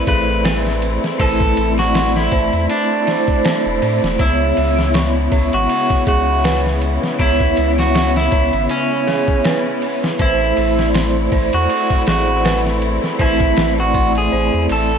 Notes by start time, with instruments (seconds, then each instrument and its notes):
Already playing: vibraphone A3 E4 C5 D5, string section A3 C4 E4, synth bell C4 C5 C6
0.07 sub bass A1, synth bell G#4, clean electric guitar B4, kick, ride
0.45 synth bell B4, snare, ride
0.67 snare
0.82 ride
1.04 snare
1.19 sub bass A1, vibraphone A3 C4 E4, clean electric guitar A4, synth bell C5, kick, ride
1.40 kick
1.57 sub bass A1, ride
1.75 vibraphone A3 E4
1.79 clean electric guitar F#4, vibraphone D5, snare
1.94 synth bell C6, snare, ride
2.16 clean electric guitar E4, snare
2.32 sub bass A1, synth bell C5, kick, ride
2.53 sub bass E2, ride
2.70 clean electric guitar D4, ride
3.06 vibraphone A3 E4 C5, synth bell D5, snare, ride
3.25 vibraphone A3 E4, kick
3.32 vibraphone C5
3.45 synth bell C5, snare, ride
3.66 sub bass E1
3.82 sub bass A2, synth bell C5, ride
4.03 sub bass E1, snare
4.18 sub bass C#2, string section C#3 G#3 B3, vibraphone B3 E4 C#5, clean electric guitar E4, synth bell C#5, kick, ride
4.57 sub bass C#2, ride
4.75 vibraphone B3 E4, snare
4.82 vibraphone E5
4.94 synth bell C#6, snare, ride
5.32 sub bass C#2, synth bell C#5, kick, ride
5.53 sub bass G#1, clean electric guitar F#4, ride
5.69 ride
5.90 kick
6.07 sub bass C#2, clean electric guitar F#4, synth bell G#4, kick, ride
6.44 synth bell B4, snare, ride
6.66 snare
6.82 ride
7.04 snare
7.18 sub bass C#2, vibraphone B3 E4 C#5, clean electric guitar E4, synth bell C#5, kick, ride
7.40 kick
7.57 sub bass C#2, ride
7.75 vibraphone B3 E4
7.79 clean electric guitar F#4, vibraphone E5, snare
7.95 synth bell C#6, snare, ride
8.16 clean electric guitar E4, snare
8.32 sub bass C#2, synth bell C#5, kick, ride
8.53 sub bass G#1, ride
8.69 clean electric guitar C#4, ride
9.07 synth bell G#4, snare, ride
9.28 kick
9.45 synth bell B4, snare, ride
9.82 ride
10.04 snare
10.18 sub bass A1, vibraphone A3 E4 C5, string section A3 C4 E4, clean electric guitar E4, synth bell C5, kick, ride
10.57 sub bass A1, ride
10.75 vibraphone A3 E4, snare
10.82 vibraphone D5
10.94 synth bell C6, snare, ride
11.32 sub bass A1, synth bell C5, kick, ride
11.53 sub bass E2, clean electric guitar F#4, ride
11.70 ride
11.90 kick
12.07 sub bass A1, clean electric guitar F#4, synth bell G#4, snare, ride
12.45 synth bell B4, snare, ride
12.67 snare
12.82 ride
13.04 snare
13.19 sub bass A1, vibraphone A3 C4 E4, clean electric guitar E4, synth bell C5, kick, ride
13.40 kick
13.57 sub bass A1, snare, ride
13.75 vibraphone A3 E4
13.80 clean electric guitar F#4, vibraphone D5
13.94 synth bell C6, kick, ride
14.15 clean electric guitar G#4, ride
14.32 sub bass A1, synth bell C5
14.54 sub bass E2
14.69 sub bass A1, clean electric guitar A4, ride